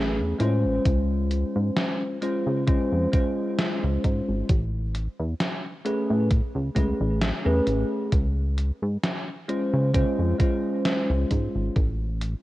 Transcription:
0.00 0.21 A1 medium
0.00 0.35 A3 medium
0.00 0.35 C#4 medium
0.00 0.35 G#4 medium
0.00 0.36 B4 medium
0.19 0.34 E2 medium
0.39 0.66 A2 loud
0.39 2.16 G#3 medium
0.39 2.17 C#4 medium
0.39 2.17 F4 medium
0.39 2.18 C5 medium
0.39 closed hi-hat medium
0.65 0.80 A1 medium
0.86 1.44 C#2 loud
0.86 kick loud
0.86 closed hi-hat medium
1.31 closed hi-hat medium
1.56 1.71 G#2 loud
1.76 snare loud
1.76 closed hi-hat medium
2.21 2.62 G#3 medium
2.21 2.62 C#4 medium
2.21 2.63 F4 medium
2.21 2.63 C5 medium
2.21 closed hi-hat medium
2.47 2.78 C#3 medium
2.67 3.08 G#3 medium
2.67 3.08 C#4 medium
2.67 3.08 F4 medium
2.67 3.08 C5 medium
2.67 kick loud
2.67 closed hi-hat medium
2.92 3.07 F2 medium
3.11 4.46 G#3 medium
3.11 4.46 C#4 medium
3.11 4.47 F4 medium
3.11 4.48 C5 medium
3.11 kick loud
3.11 closed hi-hat medium
3.58 snare loud
3.58 closed hi-hat medium
3.83 3.98 C#2 medium
4.04 4.21 G#2 medium
4.04 kick medium
4.04 closed hi-hat medium
4.28 4.43 G#1 medium
4.49 5.08 A1 loud
4.49 kick loud
4.49 closed hi-hat medium
4.95 closed hi-hat medium
5.19 5.34 E2 loud
5.40 snare loud
5.40 closed hi-hat medium
5.85 6.27 A3 medium
5.85 6.28 C#4 medium
5.85 6.28 G#4 medium
5.85 6.28 B4 loud
5.85 closed hi-hat medium
6.10 6.42 A2 medium
6.31 kick loud
6.31 closed hi-hat medium
6.55 6.70 C#2 loud
6.75 6.94 C#2 medium
6.75 7.18 A3 medium
6.75 7.18 C#4 medium
6.75 7.19 G#4 medium
6.75 7.19 B4 medium
6.75 kick medium
6.75 closed hi-hat medium
7.01 7.32 A1 loud
7.22 snare loud
7.22 closed hi-hat medium
7.45 7.61 E2 medium
7.45 8.10 A3 medium
7.45 8.10 C#4 medium
7.45 8.10 G#4 medium
7.45 8.11 B4 loud
7.67 7.85 A1 medium
7.67 closed hi-hat medium
8.12 8.71 C#2 loud
8.12 kick loud
8.12 closed hi-hat medium
8.58 closed hi-hat medium
8.82 8.98 G#2 loud
9.04 snare loud
9.04 closed hi-hat medium
9.48 9.89 G#3 medium
9.48 9.89 C#4 medium
9.48 9.90 F4 medium
9.48 9.90 C5 medium
9.48 closed hi-hat medium
9.73 10.05 C#3 medium
9.94 10.35 G#3 medium
9.94 10.35 C#4 medium
9.94 10.35 F4 medium
9.94 10.35 C5 medium
9.94 kick loud
9.94 closed hi-hat medium
10.19 10.34 F2 medium
10.38 11.73 G#3 medium
10.38 11.74 C#4 medium
10.38 11.74 F4 medium
10.38 11.75 C5 medium
10.38 kick loud
10.38 closed hi-hat medium
10.85 snare loud
10.85 closed hi-hat medium
11.10 11.25 C#2 loud
11.31 11.48 G#2 medium
11.31 kick medium
11.31 closed hi-hat medium
11.55 11.70 G#1 medium
11.76 12.35 A1 loud
11.76 kick loud
11.76 closed hi-hat medium
12.22 closed hi-hat medium

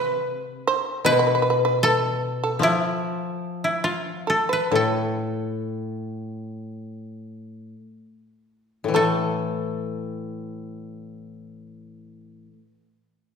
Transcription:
0.00 0.66 C3 medium
0.00 0.63 B4 medium
0.00 1.06 B4 medium
0.67 1.03 C5 loud
1.05 2.60 B2 medium
1.05 1.11 B4 medium
1.05 2.84 B4 loud
1.12 1.18 B4 medium
1.19 1.26 B4 medium
1.27 1.34 B4 medium
1.35 1.41 B4 medium
1.42 1.49 B4 medium
1.50 1.56 B4 medium
1.65 1.82 B4 medium
1.83 3.73 A4 loud
1.83 2.20 A4 medium
2.20 2.38 F4 medium
2.44 2.61 A4 medium
2.59 5.18 F3 medium
2.59 2.86 E4 medium
2.59 3.81 F4 medium
2.86 3.70 F4 medium
3.64 3.90 E4 medium
3.84 6.03 F4 medium
3.84 4.25 F4 medium
4.27 4.48 A4 medium
4.27 4.75 A4 medium
4.49 4.71 B4 medium
4.49 6.30 B4 medium
4.71 7.73 A2 medium
4.71 7.69 A4 medium
4.75 7.71 A4 medium
8.84 12.46 A2 soft
8.88 12.50 E3 soft
8.94 12.56 A3 medium
8.94 12.53 A4 medium
8.94 12.54 A4 medium

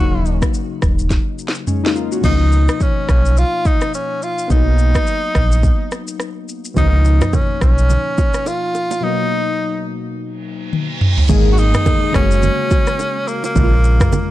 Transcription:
0.00 0.42 D#1 loud
0.00 2.19 C#3 medium
0.00 2.23 F#3 medium
0.00 1.64 A#3 medium
0.00 1.65 D#4 medium
0.00 0.39 F#4 loud
0.26 shaker medium
0.42 kick medium
0.42 cross-stick loud
0.42 shaker medium
0.54 shaker medium
0.82 1.18 D#1 loud
0.82 kick loud
0.82 cross-stick loud
0.82 shaker medium
0.99 shaker medium
1.11 kick medium
1.11 snare medium
1.11 shaker medium
1.39 shaker medium
1.48 snare medium
1.55 shaker medium
1.67 1.83 G#3 medium
1.67 1.83 C#4 medium
1.67 mid tom medium
1.67 shaker medium
1.84 1.95 A#3 medium
1.84 1.95 D#4 medium
1.84 snare medium
1.96 2.11 A#3 medium
1.96 2.11 F4 medium
1.96 shaker medium
2.12 2.39 C#4 medium
2.12 2.39 F#4 medium
2.12 shaker medium
2.21 2.68 C#2 loud
2.21 4.45 B2 medium
2.21 4.46 F3 medium
2.21 4.47 A#3 medium
2.21 2.83 D#4 loud
2.21 kick loud
2.21 crash medium
2.21 shaker medium
2.26 4.47 D#4 medium
2.52 shaker medium
2.69 cross-stick loud
2.69 shaker medium
2.80 3.09 C#4 medium
2.80 kick medium
2.80 shaker medium
3.09 3.44 B1 medium
3.09 3.39 C#4 medium
3.09 kick loud
3.09 cross-stick loud
3.09 shaker medium
3.25 shaker medium
3.37 3.68 F4 loud
3.37 shaker medium
3.65 3.94 D#4 loud
3.65 kick loud
3.65 shaker medium
3.81 cross-stick medium
3.81 shaker medium
3.94 4.24 C#4 medium
3.94 shaker medium
4.22 4.50 F4 loud
4.22 shaker soft
4.38 shaker medium
4.48 4.95 B1 loud
4.48 6.72 F#3 medium
4.48 6.73 A#3 medium
4.48 6.71 B3 medium
4.48 6.16 D#4 loud
4.48 kick loud
4.48 shaker medium
4.53 6.74 D#4 medium
4.79 shaker medium
4.95 kick medium
4.95 cross-stick loud
4.95 shaker medium
5.07 shaker medium
5.35 5.70 A#1 medium
5.35 kick loud
5.35 cross-stick loud
5.35 shaker medium
5.52 shaker medium
5.63 kick medium
5.63 shaker medium
5.92 cross-stick medium
5.92 shaker medium
6.08 shaker medium
6.20 cross-stick medium
6.20 shaker medium
6.49 shaker medium
6.65 shaker medium
6.74 7.21 C#2 loud
6.74 8.98 B2 medium
6.74 8.99 F3 medium
6.74 8.99 A#3 medium
6.74 7.36 D#4 loud
6.74 kick loud
6.74 low conga medium
6.74 shaker medium
6.79 9.00 D#4 medium
7.05 low bongo medium
7.05 shaker medium
7.21 cross-stick loud
7.21 mid tom medium
7.21 low bongo medium
7.21 shaker medium
7.33 7.62 C#4 medium
7.33 kick medium
7.33 high bongo medium
7.33 low conga medium
7.33 shaker medium
7.61 7.97 B1 medium
7.61 8.49 C#4 loud
7.61 kick loud
7.61 cross-stick loud
7.61 shaker medium
7.78 shaker medium
7.90 low conga medium
7.90 shaker medium
8.18 kick loud
8.18 low bongo medium
8.18 shaker medium
8.34 cross-stick medium
8.34 shaker medium
8.46 9.05 F4 loud
8.46 high bongo medium
8.46 shaker medium
8.75 high bongo medium
8.75 shaker medium
8.91 low bongo medium
8.91 shaker medium
9.01 11.24 B2 medium
9.01 11.25 F#3 medium
9.01 11.26 A#3 medium
9.01 9.88 D#4 loud
9.06 11.27 D#4 medium
10.16 reverse cymbal medium
10.73 high tom medium
11.01 mid tom medium
11.18 floor tom medium
11.28 11.74 G#1 loud
11.28 12.14 D#3 medium
11.28 12.12 G#3 medium
11.28 12.14 A#3 medium
11.28 12.15 G#4 medium
11.28 kick loud
11.28 crash loud
11.28 downlifter medium
11.28 low conga medium
11.28 shaker medium
11.53 11.60 F#4 medium
11.58 12.15 D#4 loud
11.58 shaker medium
11.74 cross-stick loud
11.74 mid tom medium
11.74 shaker medium
11.86 kick medium
11.86 high bongo medium
11.86 low conga medium
11.86 shaker medium
12.12 12.50 F#1 loud
12.12 13.52 C#3 medium
12.12 13.53 G#3 medium
12.12 13.54 A#3 medium
12.12 13.30 C#4 loud
12.12 kick loud
12.12 cross-stick loud
12.12 shaker medium
12.17 13.54 F#4 medium
12.31 shaker medium
12.43 low conga medium
12.43 shaker medium
12.71 kick loud
12.71 low bongo medium
12.71 shaker medium
12.87 cross-stick medium
12.87 shaker medium
12.99 high bongo medium
12.99 shaker medium
13.28 13.44 A#3 medium
13.28 shaker medium
13.44 14.31 A#3 medium
13.44 low bongo medium
13.44 shaker medium
13.55 14.00 A#1 loud
13.55 14.31 C#3 medium
13.55 14.31 G#3 medium
13.55 14.31 A#3 medium
13.55 13.64 E4 medium
13.55 kick loud
13.55 low conga medium
13.55 shaker medium
13.64 14.31 F4 medium
13.84 shaker medium
14.00 kick loud
14.00 cross-stick loud
14.00 mid tom medium
14.00 shaker medium
14.12 high bongo medium
14.12 low conga medium
14.12 shaker medium

